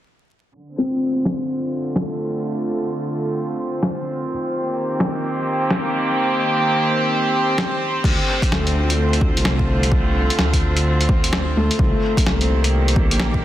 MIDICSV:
0, 0, Header, 1, 5, 480
1, 0, Start_track
1, 0, Tempo, 468750
1, 558, Time_signature, 4, 2, 24, 8
1, 13771, End_track
2, 0, Start_track
2, 0, Title_t, "String section"
2, 0, Program_c, 0, 48
2, 565, Note_on_c, 0, 50, 63
2, 756, Note_on_c, 0, 60, 73
2, 786, Note_on_c, 0, 65, 66
2, 795, Note_on_c, 0, 57, 64
2, 1480, Note_on_c, 0, 72, 58
2, 4393, Note_on_c, 0, 51, 63
2, 4399, Note_off_c, 0, 57, 0
2, 4402, Note_off_c, 0, 50, 0
2, 4692, Note_on_c, 0, 67, 76
2, 4693, Note_on_c, 0, 58, 76
2, 5954, Note_off_c, 0, 65, 0
2, 8232, Note_on_c, 0, 50, 67
2, 8235, Note_off_c, 0, 51, 0
2, 8236, Note_off_c, 0, 58, 0
2, 8481, Note_on_c, 0, 57, 78
2, 8893, Note_on_c, 0, 65, 69
2, 9342, Note_off_c, 0, 67, 0
2, 12075, Note_off_c, 0, 50, 0
2, 12077, Note_off_c, 0, 57, 0
2, 12082, Note_on_c, 0, 51, 65
2, 12364, Note_on_c, 0, 58, 80
2, 12923, Note_on_c, 0, 67, 75
2, 13463, Note_off_c, 0, 65, 0
2, 13771, Note_off_c, 0, 51, 0
2, 13771, Note_off_c, 0, 58, 0
2, 13771, Note_off_c, 0, 60, 0
2, 13771, Note_off_c, 0, 67, 0
2, 13771, Note_off_c, 0, 72, 0
2, 13771, End_track
3, 0, Start_track
3, 0, Title_t, "Felt piano"
3, 0, Program_c, 1, 0
3, 758, Control_c, 1, 64, 127
3, 801, Note_on_c, 1, 60, 62
3, 1322, Note_off_c, 1, 60, 0
3, 4411, Control_c, 1, 64, 0
3, 8438, Control_c, 1, 64, 127
3, 8723, Note_on_c, 1, 57, 51
3, 9243, Note_off_c, 1, 57, 0
3, 11847, Note_on_c, 1, 57, 81
3, 12091, Control_c, 1, 64, 0
3, 12266, Control_c, 1, 64, 127
3, 12289, Note_off_c, 1, 57, 0
3, 13771, End_track
4, 0, Start_track
4, 0, Title_t, "Detuned saw bass"
4, 0, Program_c, 2, 39
4, 8236, Note_on_c, 2, 38, 97
4, 8376, Note_off_c, 2, 38, 0
4, 8717, Note_on_c, 2, 38, 94
4, 9570, Note_off_c, 2, 38, 0
4, 9594, Note_on_c, 2, 36, 101
4, 10532, Note_off_c, 2, 36, 0
4, 10640, Note_on_c, 2, 38, 96
4, 11348, Note_off_c, 2, 38, 0
4, 11358, Note_on_c, 2, 38, 77
4, 11827, Note_off_c, 2, 38, 0
4, 11839, Note_on_c, 2, 38, 100
4, 11978, Note_off_c, 2, 38, 0
4, 12077, Note_on_c, 2, 36, 98
4, 12217, Note_off_c, 2, 36, 0
4, 12556, Note_on_c, 2, 36, 98
4, 13409, Note_off_c, 2, 36, 0
4, 13428, Note_on_c, 2, 34, 99
4, 13771, Note_off_c, 2, 34, 0
4, 13771, End_track
5, 0, Start_track
5, 0, Title_t, "Drums"
5, 1284, Note_on_c, 9, 38, 92
5, 1386, Note_off_c, 9, 38, 0
5, 2004, Note_on_c, 9, 38, 98
5, 2106, Note_off_c, 9, 38, 0
5, 3917, Note_on_c, 9, 38, 102
5, 4020, Note_off_c, 9, 38, 0
5, 5121, Note_on_c, 9, 38, 98
5, 5223, Note_off_c, 9, 38, 0
5, 5841, Note_on_c, 9, 38, 105
5, 5944, Note_off_c, 9, 38, 0
5, 7762, Note_on_c, 9, 38, 104
5, 7864, Note_off_c, 9, 38, 0
5, 8235, Note_on_c, 9, 36, 109
5, 8244, Note_on_c, 9, 49, 87
5, 8337, Note_off_c, 9, 36, 0
5, 8347, Note_off_c, 9, 49, 0
5, 8625, Note_on_c, 9, 36, 98
5, 8633, Note_on_c, 9, 42, 55
5, 8726, Note_on_c, 9, 38, 98
5, 8728, Note_off_c, 9, 36, 0
5, 8735, Note_off_c, 9, 42, 0
5, 8828, Note_off_c, 9, 38, 0
5, 8876, Note_on_c, 9, 42, 43
5, 8978, Note_off_c, 9, 42, 0
5, 9113, Note_on_c, 9, 42, 52
5, 9215, Note_off_c, 9, 42, 0
5, 9351, Note_on_c, 9, 42, 44
5, 9434, Note_on_c, 9, 36, 101
5, 9454, Note_off_c, 9, 42, 0
5, 9536, Note_off_c, 9, 36, 0
5, 9595, Note_on_c, 9, 42, 56
5, 9677, Note_on_c, 9, 38, 103
5, 9697, Note_off_c, 9, 42, 0
5, 9780, Note_off_c, 9, 38, 0
5, 9824, Note_on_c, 9, 36, 57
5, 9927, Note_off_c, 9, 36, 0
5, 10069, Note_on_c, 9, 42, 54
5, 10154, Note_on_c, 9, 36, 114
5, 10171, Note_off_c, 9, 42, 0
5, 10257, Note_off_c, 9, 36, 0
5, 10550, Note_on_c, 9, 42, 56
5, 10635, Note_on_c, 9, 38, 104
5, 10652, Note_off_c, 9, 42, 0
5, 10738, Note_off_c, 9, 38, 0
5, 10786, Note_on_c, 9, 36, 59
5, 10788, Note_on_c, 9, 42, 43
5, 10888, Note_off_c, 9, 36, 0
5, 10890, Note_off_c, 9, 42, 0
5, 11023, Note_on_c, 9, 42, 54
5, 11126, Note_off_c, 9, 42, 0
5, 11270, Note_on_c, 9, 42, 42
5, 11355, Note_on_c, 9, 36, 106
5, 11372, Note_off_c, 9, 42, 0
5, 11458, Note_off_c, 9, 36, 0
5, 11509, Note_on_c, 9, 42, 55
5, 11599, Note_on_c, 9, 38, 105
5, 11611, Note_off_c, 9, 42, 0
5, 11701, Note_off_c, 9, 38, 0
5, 11990, Note_on_c, 9, 42, 53
5, 12075, Note_on_c, 9, 36, 117
5, 12092, Note_off_c, 9, 42, 0
5, 12177, Note_off_c, 9, 36, 0
5, 12465, Note_on_c, 9, 36, 104
5, 12471, Note_on_c, 9, 42, 54
5, 12559, Note_on_c, 9, 38, 105
5, 12567, Note_off_c, 9, 36, 0
5, 12574, Note_off_c, 9, 42, 0
5, 12661, Note_off_c, 9, 38, 0
5, 12706, Note_on_c, 9, 42, 45
5, 12809, Note_off_c, 9, 42, 0
5, 12945, Note_on_c, 9, 42, 53
5, 13047, Note_off_c, 9, 42, 0
5, 13190, Note_on_c, 9, 42, 43
5, 13273, Note_on_c, 9, 36, 108
5, 13293, Note_off_c, 9, 42, 0
5, 13375, Note_off_c, 9, 36, 0
5, 13428, Note_on_c, 9, 42, 55
5, 13512, Note_on_c, 9, 38, 107
5, 13530, Note_off_c, 9, 42, 0
5, 13615, Note_off_c, 9, 38, 0
5, 13663, Note_on_c, 9, 36, 60
5, 13766, Note_off_c, 9, 36, 0
5, 13771, End_track
0, 0, End_of_file